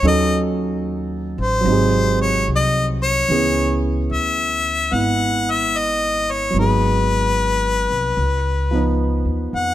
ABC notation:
X:1
M:4/4
L:1/8
Q:"Swing" 1/4=74
K:C#m
V:1 name="Harmonica"
d z2 ^B2 c d c- | c z e2 f e d c | B6 z f |]
V:2 name="Grand piano"
[F,CDA]4 [^B,,F,DG]4 | [E,B,CG]4 [B,E]4 | [F,B,DG]4 z [^E,B,DB]3 |]
V:3 name="Upright bass" clef=bass
D,,3 A,,, G,,,2 ^B,,,2 | C,,2 =D,,2 G,,,4 | G,,,3 ^B,,, C,,2- (3C,, D,, ^E,, |]